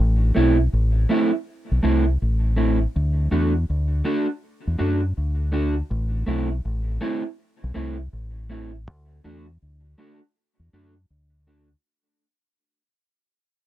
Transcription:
0.00 fingered electric bass A1
0.35 fingered electric bass B1, clean electric guitar A3 C4 E4
0.73 fingered electric bass A1
1.09 clean electric guitar A3 C4 E4
1.71 fingered electric bass B1
1.83 fingered electric bass C2, clean electric guitar A3 C4 E4
2.22 fingered electric bass A1
2.56 clean electric guitar A3 C4 E4
2.96 fingered electric bass D2
3.31 fingered electric bass E2, clean electric guitar A3 D4 F#4
3.70 fingered electric bass D2
4.05 clean electric guitar A3 D4 F#4
4.67 fingered electric bass E2
4.78 fingered electric bass F#2, clean electric guitar A3 D4 F#4
5.17 fingered electric bass D2
5.52 clean electric guitar A3 D4 F#4
5.91 fingered electric bass A1
6.26 fingered electric bass B1, clean electric guitar A3 C4 E4
6.65 fingered electric bass A1
7.01 clean electric guitar A3 C4 E4
7.64 fingered electric bass B1
7.74 fingered electric bass C2, clean electric guitar A3 C4 E4
8.13 fingered electric bass A1
8.50 clean electric guitar A3 C4 E4
8.88 fingered electric bass D2
9.24 fingered electric bass E2, clean electric guitar A3 D4 F#4
9.62 fingered electric bass D2
9.98 clean electric guitar A3 D4 F#4
10.59 fingered electric bass E2
10.73 fingered electric bass F#2, clean electric guitar A3 D4 F#4
11.10 fingered electric bass D2
11.47 clean electric guitar A3 D4 F#4

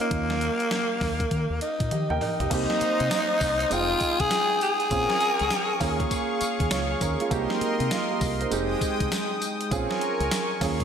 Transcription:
Already playing: grand piano A#3 C#4 F4 A#4
0.00 tenor saxophone A#3, closed hi-hat
0.11 fingered electric bass D#2, kick, closed hi-hat
0.30 snare
0.41 closed hi-hat
0.60 closed hi-hat
0.71 snare, closed hi-hat
1.01 fingered electric bass D#2, kick, snare, open hi-hat
1.20 kick, closed hi-hat
1.31 fingered electric bass D#3, kick, closed hi-hat
1.50 fingered electric bass D#2
1.61 tenor saxophone D#4, closed hi-hat
1.80 fingered electric bass A#2, kick, closed hi-hat
1.91 fingered electric bass D#3, grand piano G4 D#5, closed hi-hat, high tom
2.10 fingered electric bass D#2, grand piano A#4 G5, mid tom
2.21 tenor saxophone D#4, mid tom, open hi-hat
2.40 fingered electric bass B1, grand piano G4 D#5, closed hi-hat, floor tom
2.50 fingered electric bass C2, grand piano A#3 C4 D#4 G4, analog synth pad C5 A#5 D#6, kick, closed hi-hat, crash, tambourine
2.70 snare
2.81 muted fingered electric bass stroke, closed hi-hat
3.00 fingered electric bass C3, closed hi-hat
3.11 snare, closed hi-hat, tambourine
3.41 fingered electric bass C2, kick, open hi-hat, tambourine
3.60 closed hi-hat
3.70 fingered electric bass F1, grand piano G#3 C4 D#4 G5, tenor saxophone F4, analog synth pad G#4 G5, closed hi-hat, tambourine
4.00 kick, closed hi-hat, tambourine
4.20 fingered electric bass C2, tenor saxophone G#4, kick, closed hi-hat
4.31 snare, closed hi-hat, tambourine
4.61 tenor saxophone G#4, closed hi-hat, tambourine
4.80 closed hi-hat
4.91 fingered electric bass A#1, grand piano C4 C#4 F4 G#4, analog synth pad A#4 G#5 C#6, kick, closed hi-hat, tambourine
5.10 snare
5.21 closed hi-hat
5.39 fingered electric bass C#2, closed hi-hat
5.50 snare, closed hi-hat, tambourine
5.80 fingered electric bass D#2, grand piano A#3 C#4 F4 G#4, analog synth pad G#4 F5, kick, open hi-hat, tambourine
6.00 kick, closed hi-hat
6.11 kick, closed hi-hat, tambourine
6.41 muted fingered electric bass stroke, closed hi-hat, tambourine
6.60 fingered electric bass D#2, kick, closed hi-hat
6.71 fingered electric bass C#2, grand piano F4 C#5, snare, closed hi-hat, tambourine
7.01 fingered electric bass D#2, grand piano C#4 A#4, kick, closed hi-hat, tambourine
7.20 grand piano G#3 F4, closed hi-hat
7.31 fingered electric bass C2, grand piano A#3 C4 D#4 G4, analog synth pad A#4 D#5 C6, kick, closed hi-hat, tambourine
7.50 snare
7.61 muted fingered electric bass stroke, closed hi-hat
7.80 fingered electric bass C3, closed hi-hat
7.91 grand piano F4, snare, closed hi-hat, tambourine
8.11 grand piano A#3 G4
8.21 fingered electric bass C2, grand piano A#4, kick, open hi-hat, tambourine
8.41 grand piano D#4 C5, closed hi-hat
8.51 fingered electric bass F1, grand piano G#3 C4 D#4 G4, analog synth pad G#3 G5 D#6, closed hi-hat, tambourine
8.81 muted fingered electric bass stroke, kick, closed hi-hat, tambourine
9.00 fingered electric bass C2, kick, closed hi-hat
9.12 snare, closed hi-hat, tambourine
9.42 closed hi-hat, tambourine
9.61 closed hi-hat
9.71 fingered electric bass A#1, grand piano C4 C#4 F4 G#4, analog synth pad A#4 G#5 C#6, kick, closed hi-hat, tambourine
9.91 snare
10.01 closed hi-hat
10.20 fingered electric bass C#2, closed hi-hat
10.31 snare, closed hi-hat, tambourine
10.61 fingered electric bass D#2, grand piano A#3 C#4 F4 G#4, analog synth pad G#4 F5, kick, snare, open hi-hat, tambourine
10.80 kick, closed hi-hat

